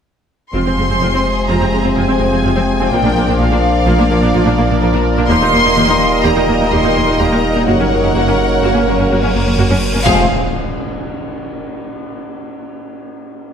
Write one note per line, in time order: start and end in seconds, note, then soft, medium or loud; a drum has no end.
0.53 2.93 F1 medium
0.53 0.58 F1 soft
0.53 0.58 F2 soft
0.53 2.88 C3 soft
0.53 5.26 F3 soft
0.53 5.26 F3 medium
0.53 2.88 G#3 soft
0.53 2.88 C4 soft
0.53 0.59 C4 soft
0.53 2.88 C4 medium
0.53 0.59 F4 soft
0.53 2.88 G#4 soft
0.53 2.88 G#4 medium
0.53 2.88 C5 soft
0.53 2.88 C5 medium
0.53 1.45 C6 medium
0.65 0.70 F2 soft
0.65 0.71 C4 soft
0.78 0.82 F1 soft
0.78 0.82 F2 soft
0.78 0.83 G#3 soft
0.78 0.83 C4 soft
0.89 0.94 F2 soft
0.89 0.95 C4 soft
1.01 1.06 F1 medium
1.01 1.06 F2 soft
1.01 1.06 C4 medium
1.01 1.06 F4 soft
1.13 1.18 F2 soft
1.13 1.18 C4 soft
1.49 1.53 F1 medium
1.49 1.53 F2 soft
1.49 1.54 C4 medium
1.49 1.54 F4 medium
1.49 1.97 A#5 medium
1.61 1.65 F2 soft
1.61 1.66 C4 soft
1.72 1.78 F1 soft
1.72 1.77 F2 soft
1.72 1.78 G#3 soft
1.72 1.78 C4 soft
1.84 1.89 F2 soft
1.84 1.89 C4 soft
1.96 2.01 F1 medium
1.96 2.01 F2 medium
1.96 2.01 C4 medium
1.96 2.02 F4 medium
1.96 2.90 G#5 medium
2.08 2.13 F2 soft
2.08 2.13 C4 soft
2.20 2.25 F1 soft
2.20 2.25 F2 soft
2.20 2.25 G#3 soft
2.20 2.25 C4 soft
2.32 2.37 F2 soft
2.32 2.37 C4 soft
2.44 2.49 F1 medium
2.44 2.49 F2 medium
2.44 2.49 C4 medium
2.44 2.49 F4 medium
2.55 2.60 F2 soft
2.55 2.61 C4 soft
2.79 2.84 F2 soft
2.79 2.85 C4 medium
2.91 2.96 A#1 medium
2.91 5.30 A#1 medium
2.91 7.68 A#2 medium
2.91 2.96 A#2 medium
2.91 7.67 A#3 medium
2.91 7.64 A#3 soft
2.91 2.97 A#3 medium
2.91 5.26 D4 soft
2.91 2.97 F4 medium
2.91 7.67 A#4 medium
2.91 7.64 A#4 soft
2.91 5.30 D5 medium
2.91 5.30 D5 soft
2.91 3.39 G5 medium
3.03 3.08 A#2 soft
3.03 3.09 A#3 soft
3.03 3.09 D4 soft
3.15 3.20 A#1 soft
3.15 3.20 A#2 medium
3.15 3.21 A#3 soft
3.27 3.32 A#2 soft
3.27 3.33 A#3 soft
3.27 3.33 D4 soft
3.39 3.44 A#1 medium
3.39 3.44 A#2 medium
3.39 3.45 A#3 medium
3.39 3.45 F4 medium
3.39 5.03 F5 medium
3.51 3.56 A#2 soft
3.51 3.56 A#3 medium
3.51 3.56 D4 soft
3.86 3.92 A#1 medium
3.86 3.91 A#2 medium
3.86 3.92 A#3 medium
3.86 3.92 F4 medium
3.98 4.03 A#2 soft
3.98 4.04 A#3 soft
3.98 4.04 D4 soft
4.11 4.15 A#1 medium
4.11 4.15 A#2 soft
4.11 4.16 A#3 medium
4.22 4.27 A#2 soft
4.22 4.27 A#3 medium
4.22 4.27 D4 soft
4.34 4.39 A#1 medium
4.34 4.38 A#2 medium
4.34 4.39 A#3 medium
4.34 4.39 F4 medium
4.46 4.51 A#2 soft
4.46 4.51 A#3 soft
4.46 4.51 D4 medium
4.58 4.63 A#1 medium
4.58 4.63 A#2 medium
4.58 4.63 A#3 soft
4.70 4.75 A#2 medium
4.70 4.75 A#3 medium
4.70 4.75 D4 medium
4.81 4.86 A#1 medium
4.81 4.87 A#2 medium
4.81 4.87 A#3 medium
4.81 4.87 F4 medium
4.94 4.99 A#2 soft
4.94 4.98 A#3 medium
4.94 4.99 D4 medium
5.17 5.22 A#2 soft
5.17 5.22 A#3 medium
5.17 5.22 D4 medium
5.29 7.69 D#1 medium
5.29 5.34 D#2 medium
5.29 7.64 G3 medium
5.29 7.68 G3 medium
5.29 5.34 A#3 medium
5.29 8.59 D#4 medium
5.29 5.34 G4 medium
5.29 7.64 D#5 medium
5.29 7.68 D#5 medium
5.29 6.21 C6 loud
5.41 5.46 D#2 medium
5.41 5.46 A#3 soft
5.41 5.46 D#4 soft
5.52 5.58 D#2 soft
5.52 5.59 D#2 medium
5.52 5.57 A#3 medium
5.64 5.70 D#2 soft
5.64 5.69 A#3 medium
5.64 5.69 D#4 soft
5.76 5.82 D#2 medium
5.76 5.81 A#3 medium
5.76 5.81 G4 medium
5.88 5.94 D#2 medium
5.88 5.93 A#3 soft
5.88 5.93 D#4 soft
6.24 6.29 D#2 medium
6.24 6.30 D#2 medium
6.24 6.29 A#3 medium
6.24 6.29 G4 medium
6.24 6.72 A#5 medium
6.35 6.41 D#2 soft
6.35 6.40 A#3 soft
6.35 6.41 D#4 medium
6.48 6.53 D#2 soft
6.48 6.53 A#3 soft
6.60 6.65 D#2 soft
6.60 6.65 A#3 soft
6.60 6.65 D#4 soft
6.72 6.77 D#2 medium
6.72 6.77 A#3 medium
6.72 6.77 G4 medium
6.72 7.20 C6 medium
6.84 6.89 D#2 soft
6.84 6.89 A#3 soft
6.84 6.89 D#4 medium
6.96 7.01 D#2 medium
6.96 7.01 D#2 soft
6.96 7.01 A#3 soft
7.08 7.13 D#2 soft
7.08 7.12 A#3 soft
7.08 7.13 D#4 medium
7.20 7.25 D#2 medium
7.20 7.25 A#3 medium
7.20 7.25 G4 medium
7.20 7.68 A#5 medium
7.32 7.37 D#2 soft
7.32 7.37 A#3 soft
7.32 7.36 D#4 soft
7.56 7.61 D#2 soft
7.56 7.61 A#3 medium
7.56 7.60 D#4 soft
7.67 7.72 F#1 medium
7.67 10.04 F#1 medium
7.67 7.72 F#2 medium
7.67 9.82 C#3 medium
7.67 9.78 F#3 medium
7.67 10.06 F#3 medium
7.67 7.72 A#3 medium
7.67 9.78 A#3 soft
7.67 10.02 A#3 medium
7.67 7.72 F#4 medium
7.67 9.82 A#4 medium
7.67 10.02 A#4 medium
7.67 9.82 C#5 soft
7.67 10.06 C#5 medium
7.67 9.54 F#5 medium
7.67 cymbal swell medium
7.79 7.84 F#2 soft
7.79 7.84 A#3 soft
7.79 7.84 C#4 soft
7.91 7.96 F#1 soft
7.91 7.96 F#2 soft
7.91 7.96 A#3 soft
8.03 8.08 F#2 soft
8.03 8.08 A#3 soft
8.03 8.08 C#4 soft
8.15 8.19 F#1 medium
8.15 8.20 F#2 medium
8.15 8.20 A#3 medium
8.15 8.20 F#4 medium
8.27 8.32 F#2 soft
8.27 8.32 A#3 soft
8.27 8.32 C#4 soft
8.62 8.67 F#1 medium
8.62 8.68 F#2 medium
8.62 8.68 A#3 medium
8.62 9.82 C#4 soft
8.62 8.68 F#4 medium
8.75 8.80 F#2 soft
8.75 8.80 A#3 soft
8.75 8.80 C#4 soft
8.86 8.91 F#1 soft
8.86 8.92 F#2 soft
8.86 8.93 A#3 soft
8.98 9.03 F#2 soft
8.98 9.04 A#3 soft
8.98 9.04 C#4 soft
9.10 9.15 F#1 medium
9.10 9.15 F#2 medium
9.10 9.16 A#3 medium
9.10 9.16 F#4 medium
9.23 9.27 F#2 soft
9.23 9.28 A#3 soft
9.23 9.28 C#4 medium
9.34 9.39 F#1 soft
9.34 9.39 F#2 soft
9.34 9.40 A#3 soft
9.46 9.51 F#2 soft
9.46 9.51 A#3 soft
9.46 9.51 C#4 soft
9.58 9.62 F#1 medium
9.58 9.63 F#2 medium
9.58 9.63 A#3 medium
9.58 9.63 F#4 medium
9.69 9.75 F#2 soft
9.69 9.74 A#3 soft
9.69 9.74 C#4 soft
9.93 9.99 F#2 soft
9.93 9.98 A#3 medium
9.93 9.98 C#4 medium
10.05 10.32 F1 loud
10.05 10.32 F1 medium
10.05 10.32 F2 medium
10.05 10.25 C3 medium
10.05 10.25 F3 medium
10.05 10.25 G#3 medium
10.05 10.32 C4 medium
10.05 10.26 F4 medium
10.05 10.32 G#4 medium
10.05 10.32 F5 loud
10.05 10.33 F5 medium
10.05 impact medium